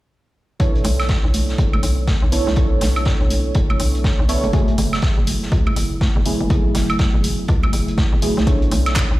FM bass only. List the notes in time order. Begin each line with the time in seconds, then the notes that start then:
0.85 B1
1.24 B1
1.58 F#1
1.83 B1
2.22 B1
2.47 B1
2.81 B1
3.21 B1
3.55 F#1
3.80 B1
4.19 B1
4.44 F#1
4.78 F#1
5.18 F#1
5.52 C#2
5.76 F#1
6.16 F#1
6.41 F#1
6.75 F#1
7.14 F#1
7.49 C#2
7.73 F#1
8.13 F#1
8.37 B1
8.72 B1
9.11 B1